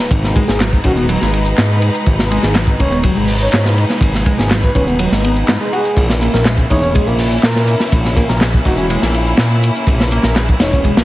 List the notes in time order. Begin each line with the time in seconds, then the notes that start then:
Already playing: G#3 D#4 B4 A#5, sub drop
0.11 G#1, kick, ride, shaker
0.24 snare, shaker
0.36 G#3, kick, ride
0.48 G#1 G#4, snare, shaker
0.60 F#3, snare, clap, ride, shaker
0.73 kick, shaker
0.84 D#1 C#4 F#4, kick, ride
0.97 B3 F#4, shaker
1.09 F#3, ride, shaker
1.21 G#1 G#3, snare, shaker
1.33 ride
1.46 shaker
1.58 G#2, snare, clap, ride, shaker
1.70 shaker
1.82 ride
1.94 shaker
2.06 G#1, kick, ride, shaker
2.19 snare, shaker
2.31 G#3, ride
2.43 G#1 G#4, snare, shaker
2.55 F#3, snare, clap, ride, shaker
2.67 kick, shaker
2.79 D#1 C#4 C#5, kick, ride
2.92 B3, shaker
3.03 F#3, kick, ride, shaker
3.17 G#1 G#3, shaker
3.27 open hi-hat
3.41 C#5, shaker
3.52 G#2 C#5, snare, clap, ride, shaker
3.65 snare, shaker
3.78 ride
3.90 snare, shaker
4.01 G#1, kick, ride, shaker
4.14 snare, shaker
4.26 G#3, kick, ride
4.38 G#1 G#4, snare, shaker
4.50 F#3, snare, clap, ride, shaker
4.63 B4, kick, shaker
4.75 D#1 C#4 B4, kick, ride
4.87 B3, shaker
4.99 F#3, ride, shaker
5.12 G#1 G#3, snare, shaker
5.24 B3, ride
5.36 shaker
5.48 G#2 B3, snare, clap, ride, shaker
5.61 G#3, shaker
5.72 F#4 G#4, ride
5.85 shaker
5.96 A#1 A#3 C#4 E4, kick, ride, shaker
6.09 snare, shaker
6.21 A#3, open hi-hat, ride
6.34 A#1 A#4, snare, shaker
6.45 G#3, snare, clap, ride, shaker
6.58 kick, shaker
6.70 E1 D#4 C#5, kick, open hi-hat, ride
6.82 C#4, shaker
6.94 G#3, kick, ride, shaker
7.07 A#1 A#3, shaker
7.19 open hi-hat
7.31 shaker
7.43 A#2 A#4, snare, clap, ride, shaker
7.56 snare, shaker
7.68 open hi-hat, ride
7.80 snare, shaker
7.92 A#1, kick, ride, shaker
8.05 snare, shaker
8.16 A#3, kick, open hi-hat, ride
8.29 A#1 A#4, snare, shaker
8.41 G#3, snare, clap, ride, shaker
8.54 kick, shaker
8.65 E1 D#4 F#4, kick, open hi-hat, ride
8.78 C#4 F#4, shaker
8.90 G#3, ride, shaker
9.02 A#1 A#3, snare, shaker
9.14 open hi-hat, ride
9.27 shaker
9.37 A#2, snare, clap, ride, shaker
9.51 shaker
9.63 open hi-hat, ride
9.75 shaker
9.87 A#1, kick, ride, shaker
10.00 snare, shaker
10.11 A#3, open hi-hat, ride
10.23 A#1 A#4, snare, shaker
10.36 G#3, snare, clap, ride, shaker
10.48 kick, shaker
10.60 E1 D#4 C#5, snare, open hi-hat, ride
10.73 C#4, kick, shaker
10.84 G#3, kick, ride, shaker
10.97 A#1 A#3, snare, ride, shaker